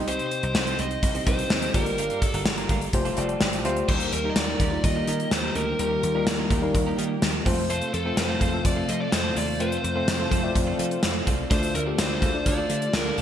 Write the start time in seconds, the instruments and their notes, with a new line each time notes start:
Already playing: slap bass C2, tine electric piano C3 C4 D#4 G4 D#5
0.08 clean electric guitar C4 D#4 G4 C5, lead electric guitar C5, closed hi-hat
0.19 closed hi-hat
0.31 muted clean electric guitar stroke, closed hi-hat
0.43 slap bass C2, clean electric guitar C4 D#4 G4 C5, closed hi-hat
0.55 slap bass C2, muted clean electric guitar stroke, snare
0.67 clean electric guitar C4 D#4 G4 C5, closed hi-hat
0.79 slap bass C2, clean electric guitar C4 D#4 G4 C5, lead electric guitar D#5, closed hi-hat
0.91 muted clean electric guitar stroke, closed hi-hat
1.03 slap bass C2, muted clean electric guitar stroke, kick, closed hi-hat
1.15 clean electric guitar C4 D#4 G4 C5, closed hi-hat
1.26 slap bass C2, tine electric piano C4 D#4 G4 D#5, clean electric guitar C4 D#4 G4 C5, lead electric guitar C5, kick, closed hi-hat
1.39 muted clean electric guitar stroke, closed hi-hat
1.50 slap bass D#2, muted clean electric guitar stroke, snare
1.62 clean electric guitar C4 D#4 G4 C5, closed hi-hat
1.74 slap bass G1, tine electric piano G2 A#3 F4 G4 D5, clean electric guitar G3 D4 F4 A#4, lead electric guitar A#4, kick, closed hi-hat
1.86 muted clean electric guitar stroke, closed hi-hat
1.98 clean electric guitar G3 D4 F4 A#4, closed hi-hat
2.10 closed hi-hat
2.22 lead electric guitar A4, muted clean electric guitar stroke, kick, closed hi-hat
2.34 slap bass G1, clean electric guitar G3 D4 F4 A#4, closed hi-hat
2.46 slap bass G1, muted clean electric guitar stroke, snare
2.57 clean electric guitar G3 D4 F4 A#4, closed hi-hat
2.69 slap bass G1, clean electric guitar G3 D4 F4 A#4, kick, closed hi-hat
2.81 muted clean electric guitar stroke, closed hi-hat
2.93 slap bass F1, tine electric piano A3 F4 G4 C5, muted clean electric guitar stroke, kick, closed hi-hat
3.05 clean electric guitar G3 C4 F4 A4, closed hi-hat
3.17 slap bass F1, clean electric guitar G3 C4 F4 A4, tine electric piano A3 F4 G4 D5 A5, closed hi-hat
3.29 muted clean electric guitar stroke, closed hi-hat
3.41 slap bass G1, tine electric piano G5, snare
3.53 muted clean electric guitar stroke, closed hi-hat
3.64 slap bass D2, clean electric guitar G3 C4 F4 A4, tine electric piano A3 F4 G4 C5 F5, closed hi-hat
3.76 muted clean electric guitar stroke, closed hi-hat
3.88 slap bass D#2, string machine D#3 A#3 G4, tine electric piano D#3 G3 A#3 D#4 A#4, clean electric guitar A#3 D#4 G4 A#4, lead electric guitar C5, kick, crash
4.00 closed hi-hat
4.12 slap bass D#2, lead electric guitar A#4, muted clean electric guitar stroke, closed hi-hat
4.24 tine electric piano G3 A#3 D#4 A#4, clean electric guitar A#3 D#4 G4 A#4
4.30 lead electric guitar D#5
4.36 slap bass D#2, lead electric guitar D5, snare, closed hi-hat
4.49 clean electric guitar A#3 D#4 G4 A#4
4.60 slap bass D#2, clean electric guitar A#3 D#4 G4 A#4, kick, closed hi-hat
4.71 tine electric piano G3 A#3 D#4 F4, muted clean electric guitar stroke
4.84 slap bass D#2, lead electric guitar D#5, muted clean electric guitar stroke, kick, closed hi-hat
4.96 clean electric guitar A#3 D#4 G4 A#4
5.07 slap bass D#3, clean electric guitar A#3 D#4 G4 A#4, closed hi-hat
5.20 muted clean electric guitar stroke, closed hi-hat
5.31 slap bass D#2, lead electric guitar C5, muted clean electric guitar stroke, snare, closed hi-hat
5.44 clean electric guitar A#3 D#4 G4 A#4
5.55 slap bass D2, clean electric guitar A#3 D#4 G4 A#4, lead electric guitar A#4, closed hi-hat
5.67 muted clean electric guitar stroke
5.79 slap bass D#2, tine electric piano D#3 G3 A#3 D#4 A#4, clean electric guitar A#3 D#4 G4 A#4, lead electric guitar A#4, closed hi-hat
6.03 slap bass D#2, muted clean electric guitar stroke, closed hi-hat
6.14 tine electric piano G3 A#3 D#4 F4, clean electric guitar A#3 D#4 G4 A#4
6.27 slap bass D#2, snare, closed hi-hat
6.39 clean electric guitar A#3 D#4 G4 A#4
6.50 slap bass D#2, clean electric guitar A#3 D#4 G4 A#4, kick, closed hi-hat
6.62 tine electric piano G3 A#3 D#4 A#4, muted clean electric guitar stroke
6.75 slap bass D#2, muted clean electric guitar stroke, kick, closed hi-hat
6.86 clean electric guitar A#3 D#4 G4 A#4
6.98 slap bass D#3, clean electric guitar A#3 D#4 G4 A#4, closed hi-hat
7.10 muted clean electric guitar stroke
7.22 slap bass D#2, snare, closed hi-hat
7.34 muted clean electric guitar stroke
7.45 slap bass F2, string machine C3 A3 F4, tine electric piano A3 C4 F4 C5, clean electric guitar A3 C4 F4 A4, kick, open hi-hat
7.58 muted clean electric guitar stroke
7.70 clean electric guitar A3 C4 F4 A4, lead electric guitar C5, closed hi-hat
7.82 closed hi-hat
7.94 slap bass F2, lead electric guitar A4, muted clean electric guitar stroke, closed hi-hat
8.05 tine electric piano A3 C4 F4 A4, clean electric guitar A3 C4 F4 A4
8.17 slap bass F2, lead electric guitar C5, muted clean electric guitar stroke, snare, closed hi-hat
8.29 clean electric guitar A3 C4 F4 A4
8.41 slap bass F2, clean electric guitar A3 C4 F4 A4, kick, closed hi-hat
8.53 tine electric piano A3 C4 F4 A4, muted clean electric guitar stroke
8.65 slap bass F2, lead electric guitar D5, muted clean electric guitar stroke, kick, closed hi-hat
8.76 clean electric guitar A3 C4 F4 A4
8.88 slap bass F3, clean electric guitar A3 C4 F4 A4, lead electric guitar D#5, closed hi-hat
9.00 lead electric guitar D5, muted clean electric guitar stroke
9.12 slap bass F2, lead electric guitar C5, muted clean electric guitar stroke, snare, closed hi-hat
9.24 clean electric guitar A3 C4 F4 A4
9.36 slap bass D#2, clean electric guitar A3 C4 F4 A4, lead electric guitar D5, open hi-hat
9.48 muted clean electric guitar stroke
9.59 slap bass F2, clean electric guitar A3 C4 F4 A4, tine electric piano A3 C4 F4 C5, lead electric guitar C5, closed hi-hat
9.72 closed hi-hat
9.84 slap bass F2, muted clean electric guitar stroke, closed hi-hat
9.95 tine electric piano A3 C4 F4 C5, clean electric guitar A3 C4 F4 A4
10.08 slap bass F2, muted clean electric guitar stroke, snare, closed hi-hat
10.19 clean electric guitar A3 C4 F4 A4
10.31 slap bass F2, clean electric guitar A3 C4 F4 A4, kick, closed hi-hat
10.43 tine electric piano A3 C4 F4 D5, muted clean electric guitar stroke
10.55 slap bass F2, muted clean electric guitar stroke, kick, closed hi-hat
10.67 clean electric guitar A3 C4 F4 A4
10.79 slap bass F3, clean electric guitar A3 C4 F4 A4, closed hi-hat
10.91 muted clean electric guitar stroke, closed hi-hat
11.03 slap bass F2, snare, closed hi-hat
11.15 muted clean electric guitar stroke
11.27 slap bass C2, clean electric guitar A3 C4 F4 A4, kick, closed hi-hat
11.39 muted clean electric guitar stroke
11.50 slap bass D2, string machine D3 F4, tine electric piano D3 A3 D4 F4 D5, clean electric guitar A3 D4 F4 A4, lead electric guitar C5, kick, closed hi-hat
11.63 closed hi-hat
11.74 slap bass D2, lead electric guitar A#4, muted clean electric guitar stroke, closed hi-hat
11.86 tine electric piano A3 D4 F4 G4, clean electric guitar A3 D4 F4 A4
11.98 slap bass D2, lead electric guitar C5, muted clean electric guitar stroke, snare, closed hi-hat
12.10 clean electric guitar A3 D4 F4 A4
12.21 slap bass D2, clean electric guitar A3 D4 F4 A4, kick, closed hi-hat
12.33 tine electric piano A3 D4 F4 D5, muted clean electric guitar stroke
12.46 slap bass D2, lead electric guitar D5, muted clean electric guitar stroke, kick, closed hi-hat
12.57 clean electric guitar A3 D4 F4 A4
12.69 slap bass D3, clean electric guitar A3 D4 F4 A4, closed hi-hat
12.81 muted clean electric guitar stroke, closed hi-hat
12.93 slap bass D2, lead electric guitar A#4, muted clean electric guitar stroke, snare, closed hi-hat
13.05 clean electric guitar A3 D4 F4 A4
13.17 slap bass C2, clean electric guitar A3 D4 F4 A4, lead electric guitar A4, open hi-hat